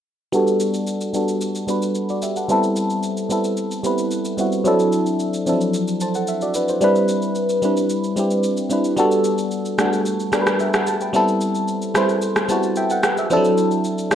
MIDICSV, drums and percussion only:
0, 0, Header, 1, 2, 480
1, 0, Start_track
1, 0, Key_signature, 1, "major"
1, 0, Tempo, 540541
1, 292, Time_signature, 4, 2, 24, 8
1, 12565, End_track
2, 0, Start_track
2, 0, Title_t, "Drums"
2, 291, Note_on_c, 9, 82, 66
2, 379, Note_off_c, 9, 82, 0
2, 418, Note_on_c, 9, 82, 52
2, 507, Note_off_c, 9, 82, 0
2, 530, Note_on_c, 9, 82, 84
2, 619, Note_off_c, 9, 82, 0
2, 654, Note_on_c, 9, 82, 53
2, 743, Note_off_c, 9, 82, 0
2, 770, Note_on_c, 9, 82, 61
2, 858, Note_off_c, 9, 82, 0
2, 895, Note_on_c, 9, 82, 51
2, 984, Note_off_c, 9, 82, 0
2, 1012, Note_on_c, 9, 82, 83
2, 1100, Note_off_c, 9, 82, 0
2, 1138, Note_on_c, 9, 82, 54
2, 1227, Note_off_c, 9, 82, 0
2, 1252, Note_on_c, 9, 82, 71
2, 1341, Note_off_c, 9, 82, 0
2, 1377, Note_on_c, 9, 82, 56
2, 1466, Note_off_c, 9, 82, 0
2, 1494, Note_on_c, 9, 82, 95
2, 1582, Note_off_c, 9, 82, 0
2, 1619, Note_on_c, 9, 82, 57
2, 1708, Note_off_c, 9, 82, 0
2, 1732, Note_on_c, 9, 82, 71
2, 1821, Note_off_c, 9, 82, 0
2, 1857, Note_on_c, 9, 82, 58
2, 1946, Note_off_c, 9, 82, 0
2, 1973, Note_on_c, 9, 82, 96
2, 2062, Note_off_c, 9, 82, 0
2, 2098, Note_on_c, 9, 82, 50
2, 2187, Note_off_c, 9, 82, 0
2, 2214, Note_on_c, 9, 82, 67
2, 2303, Note_off_c, 9, 82, 0
2, 2340, Note_on_c, 9, 82, 52
2, 2428, Note_off_c, 9, 82, 0
2, 2455, Note_on_c, 9, 82, 86
2, 2543, Note_off_c, 9, 82, 0
2, 2577, Note_on_c, 9, 82, 51
2, 2666, Note_off_c, 9, 82, 0
2, 2693, Note_on_c, 9, 82, 62
2, 2781, Note_off_c, 9, 82, 0
2, 2819, Note_on_c, 9, 82, 52
2, 2907, Note_off_c, 9, 82, 0
2, 2935, Note_on_c, 9, 82, 83
2, 3024, Note_off_c, 9, 82, 0
2, 3059, Note_on_c, 9, 82, 53
2, 3148, Note_off_c, 9, 82, 0
2, 3173, Note_on_c, 9, 82, 75
2, 3262, Note_off_c, 9, 82, 0
2, 3299, Note_on_c, 9, 82, 54
2, 3388, Note_off_c, 9, 82, 0
2, 3414, Note_on_c, 9, 82, 90
2, 3503, Note_off_c, 9, 82, 0
2, 3538, Note_on_c, 9, 82, 57
2, 3627, Note_off_c, 9, 82, 0
2, 3652, Note_on_c, 9, 82, 67
2, 3741, Note_off_c, 9, 82, 0
2, 3776, Note_on_c, 9, 82, 61
2, 3865, Note_off_c, 9, 82, 0
2, 3893, Note_on_c, 9, 82, 101
2, 3982, Note_off_c, 9, 82, 0
2, 4018, Note_on_c, 9, 82, 53
2, 4107, Note_off_c, 9, 82, 0
2, 4133, Note_on_c, 9, 82, 66
2, 4222, Note_off_c, 9, 82, 0
2, 4259, Note_on_c, 9, 82, 54
2, 4348, Note_off_c, 9, 82, 0
2, 4373, Note_on_c, 9, 82, 87
2, 4462, Note_off_c, 9, 82, 0
2, 4496, Note_on_c, 9, 82, 53
2, 4585, Note_off_c, 9, 82, 0
2, 4612, Note_on_c, 9, 82, 61
2, 4701, Note_off_c, 9, 82, 0
2, 4737, Note_on_c, 9, 82, 54
2, 4826, Note_off_c, 9, 82, 0
2, 4854, Note_on_c, 9, 82, 80
2, 4942, Note_off_c, 9, 82, 0
2, 4979, Note_on_c, 9, 82, 55
2, 5068, Note_off_c, 9, 82, 0
2, 5093, Note_on_c, 9, 82, 77
2, 5182, Note_off_c, 9, 82, 0
2, 5218, Note_on_c, 9, 82, 54
2, 5307, Note_off_c, 9, 82, 0
2, 5333, Note_on_c, 9, 82, 95
2, 5422, Note_off_c, 9, 82, 0
2, 5456, Note_on_c, 9, 82, 57
2, 5545, Note_off_c, 9, 82, 0
2, 5571, Note_on_c, 9, 82, 68
2, 5660, Note_off_c, 9, 82, 0
2, 5696, Note_on_c, 9, 82, 57
2, 5785, Note_off_c, 9, 82, 0
2, 5810, Note_on_c, 9, 82, 98
2, 5899, Note_off_c, 9, 82, 0
2, 5936, Note_on_c, 9, 82, 52
2, 6025, Note_off_c, 9, 82, 0
2, 6052, Note_on_c, 9, 82, 68
2, 6141, Note_off_c, 9, 82, 0
2, 6179, Note_on_c, 9, 82, 52
2, 6267, Note_off_c, 9, 82, 0
2, 6292, Note_on_c, 9, 82, 83
2, 6381, Note_off_c, 9, 82, 0
2, 6414, Note_on_c, 9, 82, 51
2, 6503, Note_off_c, 9, 82, 0
2, 6530, Note_on_c, 9, 82, 60
2, 6619, Note_off_c, 9, 82, 0
2, 6654, Note_on_c, 9, 82, 55
2, 6743, Note_off_c, 9, 82, 0
2, 6771, Note_on_c, 9, 82, 81
2, 6860, Note_off_c, 9, 82, 0
2, 6897, Note_on_c, 9, 82, 52
2, 6985, Note_off_c, 9, 82, 0
2, 7009, Note_on_c, 9, 82, 75
2, 7098, Note_off_c, 9, 82, 0
2, 7136, Note_on_c, 9, 82, 54
2, 7224, Note_off_c, 9, 82, 0
2, 7251, Note_on_c, 9, 82, 89
2, 7339, Note_off_c, 9, 82, 0
2, 7375, Note_on_c, 9, 82, 59
2, 7463, Note_off_c, 9, 82, 0
2, 7489, Note_on_c, 9, 82, 68
2, 7577, Note_off_c, 9, 82, 0
2, 7611, Note_on_c, 9, 82, 61
2, 7700, Note_off_c, 9, 82, 0
2, 7729, Note_on_c, 9, 82, 99
2, 7818, Note_off_c, 9, 82, 0
2, 7855, Note_on_c, 9, 82, 53
2, 7944, Note_off_c, 9, 82, 0
2, 7970, Note_on_c, 9, 82, 70
2, 8058, Note_off_c, 9, 82, 0
2, 8097, Note_on_c, 9, 82, 54
2, 8186, Note_off_c, 9, 82, 0
2, 8211, Note_on_c, 9, 82, 83
2, 8299, Note_off_c, 9, 82, 0
2, 8333, Note_on_c, 9, 82, 53
2, 8422, Note_off_c, 9, 82, 0
2, 8449, Note_on_c, 9, 82, 59
2, 8538, Note_off_c, 9, 82, 0
2, 8574, Note_on_c, 9, 82, 53
2, 8663, Note_off_c, 9, 82, 0
2, 8690, Note_on_c, 9, 37, 91
2, 8691, Note_on_c, 9, 82, 83
2, 8779, Note_off_c, 9, 37, 0
2, 8780, Note_off_c, 9, 82, 0
2, 8817, Note_on_c, 9, 82, 51
2, 8905, Note_off_c, 9, 82, 0
2, 8930, Note_on_c, 9, 82, 76
2, 9019, Note_off_c, 9, 82, 0
2, 9056, Note_on_c, 9, 82, 54
2, 9145, Note_off_c, 9, 82, 0
2, 9171, Note_on_c, 9, 82, 89
2, 9172, Note_on_c, 9, 37, 85
2, 9259, Note_off_c, 9, 82, 0
2, 9261, Note_off_c, 9, 37, 0
2, 9295, Note_on_c, 9, 37, 99
2, 9295, Note_on_c, 9, 82, 56
2, 9384, Note_off_c, 9, 37, 0
2, 9384, Note_off_c, 9, 82, 0
2, 9409, Note_on_c, 9, 82, 70
2, 9498, Note_off_c, 9, 82, 0
2, 9534, Note_on_c, 9, 82, 58
2, 9537, Note_on_c, 9, 37, 99
2, 9623, Note_off_c, 9, 82, 0
2, 9625, Note_off_c, 9, 37, 0
2, 9650, Note_on_c, 9, 82, 98
2, 9739, Note_off_c, 9, 82, 0
2, 9775, Note_on_c, 9, 82, 53
2, 9864, Note_off_c, 9, 82, 0
2, 9891, Note_on_c, 9, 82, 68
2, 9980, Note_off_c, 9, 82, 0
2, 10018, Note_on_c, 9, 82, 54
2, 10106, Note_off_c, 9, 82, 0
2, 10131, Note_on_c, 9, 82, 86
2, 10220, Note_off_c, 9, 82, 0
2, 10254, Note_on_c, 9, 82, 52
2, 10343, Note_off_c, 9, 82, 0
2, 10370, Note_on_c, 9, 82, 62
2, 10458, Note_off_c, 9, 82, 0
2, 10494, Note_on_c, 9, 82, 54
2, 10583, Note_off_c, 9, 82, 0
2, 10611, Note_on_c, 9, 37, 93
2, 10611, Note_on_c, 9, 82, 83
2, 10699, Note_off_c, 9, 37, 0
2, 10700, Note_off_c, 9, 82, 0
2, 10736, Note_on_c, 9, 82, 53
2, 10825, Note_off_c, 9, 82, 0
2, 10849, Note_on_c, 9, 82, 78
2, 10938, Note_off_c, 9, 82, 0
2, 10976, Note_on_c, 9, 37, 92
2, 10977, Note_on_c, 9, 82, 55
2, 11065, Note_off_c, 9, 37, 0
2, 11066, Note_off_c, 9, 82, 0
2, 11091, Note_on_c, 9, 82, 93
2, 11180, Note_off_c, 9, 82, 0
2, 11216, Note_on_c, 9, 82, 56
2, 11305, Note_off_c, 9, 82, 0
2, 11330, Note_on_c, 9, 82, 70
2, 11419, Note_off_c, 9, 82, 0
2, 11454, Note_on_c, 9, 82, 63
2, 11543, Note_off_c, 9, 82, 0
2, 11572, Note_on_c, 9, 82, 99
2, 11573, Note_on_c, 9, 37, 96
2, 11661, Note_off_c, 9, 37, 0
2, 11661, Note_off_c, 9, 82, 0
2, 11697, Note_on_c, 9, 82, 51
2, 11786, Note_off_c, 9, 82, 0
2, 11812, Note_on_c, 9, 82, 70
2, 11901, Note_off_c, 9, 82, 0
2, 11938, Note_on_c, 9, 82, 55
2, 12026, Note_off_c, 9, 82, 0
2, 12052, Note_on_c, 9, 82, 88
2, 12141, Note_off_c, 9, 82, 0
2, 12174, Note_on_c, 9, 82, 52
2, 12263, Note_off_c, 9, 82, 0
2, 12291, Note_on_c, 9, 82, 63
2, 12380, Note_off_c, 9, 82, 0
2, 12415, Note_on_c, 9, 82, 54
2, 12504, Note_off_c, 9, 82, 0
2, 12531, Note_on_c, 9, 37, 91
2, 12532, Note_on_c, 9, 82, 81
2, 12565, Note_off_c, 9, 37, 0
2, 12565, Note_off_c, 9, 82, 0
2, 12565, End_track
0, 0, End_of_file